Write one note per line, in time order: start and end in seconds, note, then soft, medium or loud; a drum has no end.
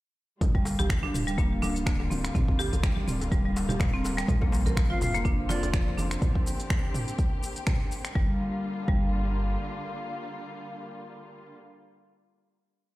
0.41 1.09 G1 loud
0.41 8.11 D3 medium
0.41 4.24 G3 medium
0.41 8.11 A#3 medium
0.41 6.18 F4 medium
0.41 kick loud
0.41 closed hi-hat soft
0.41 mid tom medium
0.41 djembe tone medium
0.41 low conga loud
0.41 shaker soft
0.55 0.64 G3 medium
0.55 kick medium
0.55 muted conga medium
0.65 open hi-hat medium
0.65 djembe slap medium
0.65 shaker medium
0.79 0.89 G4 loud
0.79 closed hi-hat medium
0.79 djembe tone loud
0.79 high conga medium
0.79 djembe bass medium
0.79 shaker medium
0.90 finger snap loud
0.90 kick loud
0.90 closed hi-hat soft
0.90 shaker soft
1.03 1.13 D4 loud
1.03 muted conga soft
1.03 high conga medium
1.03 djembe tone medium
1.14 2.30 D1 medium
1.14 mid tom medium
1.14 open hi-hat medium
1.14 shaker loud
1.27 1.37 G3 loud
1.27 closed hi-hat medium
1.27 shaker medium
1.38 1.51 A#3 loud
1.38 kick loud
1.38 closed hi-hat soft
1.38 muted conga medium
1.38 djembe tone medium
1.38 shaker soft
1.62 1.74 D4 loud
1.62 open hi-hat medium
1.62 djembe slap medium
1.62 djembe tone medium
1.62 high conga loud
1.62 shaker medium
1.76 closed hi-hat medium
1.76 muted conga soft
1.76 shaker medium
1.86 1.99 D3 medium
1.86 finger snap loud
1.86 kick loud
1.86 closed hi-hat soft
1.86 shaker soft
2.00 djembe tone medium
2.10 2.18 C4 medium
2.10 open hi-hat medium
2.10 muted conga medium
2.10 high conga loud
2.10 shaker medium
2.24 finger snap medium
2.24 closed hi-hat medium
2.24 djembe tone medium
2.24 shaker medium
2.35 3.02 G1 loud
2.35 2.47 C4 loud
2.35 kick loud
2.35 closed hi-hat soft
2.35 mid tom medium
2.35 low conga medium
2.35 shaker soft
2.48 kick medium
2.48 muted conga medium
2.59 2.72 G4 loud
2.59 open hi-hat medium
2.59 djembe tone medium
2.59 shaker loud
2.73 closed hi-hat medium
2.73 high conga loud
2.73 djembe bass loud
2.73 shaker medium
2.83 2.96 G3 medium
2.83 finger snap loud
2.83 kick loud
2.83 closed hi-hat soft
2.83 djembe tone medium
2.83 shaker soft
2.97 muted conga soft
2.97 high conga medium
3.07 4.23 D1 medium
3.07 3.15 C4 medium
3.07 mid tom medium
3.07 open hi-hat medium
3.07 high conga medium
3.07 shaker loud
3.21 closed hi-hat medium
3.21 djembe tone loud
3.21 shaker medium
3.31 3.44 G3 loud
3.31 kick loud
3.31 closed hi-hat soft
3.31 muted conga medium
3.31 high conga loud
3.31 shaker soft
3.45 3.55 G3 medium
3.45 djembe tone medium
3.56 open hi-hat medium
3.56 djembe slap medium
3.56 shaker loud
3.69 3.75 G4 medium
3.69 closed hi-hat medium
3.69 muted conga soft
3.69 high conga medium
3.69 low conga loud
3.69 shaker medium
3.79 finger snap loud
3.79 kick loud
3.79 closed hi-hat soft
3.79 mid tom medium
3.79 djembe slap loud
3.79 djembe tone medium
3.79 shaker soft
3.93 3.99 C4 loud
4.04 open hi-hat medium
4.04 muted conga soft
4.04 djembe slap medium
4.04 djembe tone medium
4.04 shaker loud
4.17 4.27 G3 loud
4.17 finger snap medium
4.17 closed hi-hat medium
4.17 shaker medium
4.28 4.96 A#1 loud
4.28 8.12 C4 medium
4.28 kick loud
4.28 closed hi-hat soft
4.28 mid tom medium
4.28 low conga loud
4.28 shaker soft
4.41 4.52 A#3 medium
4.41 kick medium
4.41 muted conga medium
4.41 djembe tone loud
4.52 open hi-hat medium
4.52 djembe slap medium
4.52 shaker loud
4.66 4.76 A#4 loud
4.66 closed hi-hat medium
4.66 djembe tone medium
4.66 high conga loud
4.66 djembe bass loud
4.66 shaker medium
4.77 finger snap loud
4.77 kick loud
4.77 closed hi-hat soft
4.77 shaker soft
4.90 5.00 F4 loud
4.90 4.99 F5 medium
4.90 muted conga soft
4.90 high conga medium
5.01 6.17 F1 medium
5.01 5.21 F5 loud
5.01 mid tom medium
5.01 open hi-hat medium
5.01 djembe tone medium
5.01 shaker loud
5.14 5.24 A#3 loud
5.14 closed hi-hat medium
5.14 shaker medium
5.25 5.38 D4 loud
5.25 kick loud
5.25 closed hi-hat soft
5.25 muted conga medium
5.25 djembe tone medium
5.25 shaker soft
5.49 5.61 F4 loud
5.49 5.69 D5 loud
5.49 open hi-hat medium
5.49 djembe slap medium
5.49 high conga loud
5.49 shaker loud
5.63 closed hi-hat medium
5.63 muted conga soft
5.63 djembe tone loud
5.63 shaker medium
5.73 5.86 F3 medium
5.73 finger snap loud
5.73 kick loud
5.73 closed hi-hat soft
5.73 shaker soft
5.88 djembe tone medium
5.97 6.05 D4 medium
5.97 open hi-hat medium
5.97 muted conga soft
5.97 high conga loud
5.97 shaker loud
6.11 finger snap medium
6.11 closed hi-hat medium
6.11 shaker medium
6.22 8.14 G4 medium
6.22 kick loud
6.22 closed hi-hat soft
6.22 mid tom medium
6.22 shaker soft
6.35 kick medium
6.46 open hi-hat medium
6.46 shaker loud
6.60 closed hi-hat medium
6.60 shaker medium
6.70 finger snap loud
6.70 kick loud
6.70 closed hi-hat soft
6.70 shaker soft
6.94 mid tom medium
6.94 open hi-hat medium
6.94 shaker loud
7.08 closed hi-hat medium
7.08 shaker medium
7.18 kick loud
7.18 closed hi-hat soft
7.18 shaker soft
7.43 open hi-hat medium
7.43 shaker loud
7.56 closed hi-hat medium
7.56 shaker medium
7.67 finger snap loud
7.67 kick loud
7.67 closed hi-hat soft
7.67 mid tom medium
7.67 shaker soft
7.91 open hi-hat medium
7.91 shaker medium
8.05 finger snap medium
8.05 closed hi-hat medium
8.05 shaker medium
8.15 8.30 G1 loud
8.15 11.53 D3 medium
8.15 8.30 G3 medium
8.15 11.53 G3 medium
8.15 11.53 A#3 medium
8.15 11.53 F4 medium
8.15 kick loud
8.88 9.57 G1 loud
8.88 9.03 G3 medium
8.88 kick loud